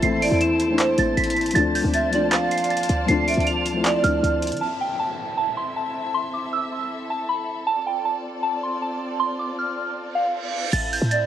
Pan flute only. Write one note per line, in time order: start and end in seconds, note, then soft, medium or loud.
0.22 0.40 D5 medium
0.79 1.15 C5 medium
1.94 2.12 E5 medium
2.13 2.31 D5 medium
2.32 3.05 F5 medium
3.28 3.46 E5 medium
3.85 4.57 D5 loud
11.11 11.26 D5 medium